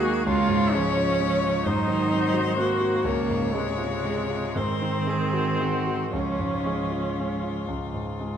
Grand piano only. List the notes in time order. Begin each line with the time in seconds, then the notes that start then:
Already playing: D#2 D#3 G#3 F#4
0.03 F#4
0.27 C#2
0.49 G#2
0.74 G#3
0.97 F4
1.20 G#3
1.44 F4
1.66 G#2
1.88 D#3
2.11 C4
2.33 F#4
2.57 C4
2.80 F#4
3.04 C#2
3.30 G#2
3.54 G#3
3.78 F4
4.05 G#3
4.30 F4
4.56 G#2
4.82 D#3
5.07 G#3
5.33 F#4
5.60 G#3
5.86 F#4
6.13 C#2
6.39 G#2
6.66 G#3
6.91 F4
7.19 G#3
7.43 F4
7.68 C#2
7.94 G#2
8.20 G#3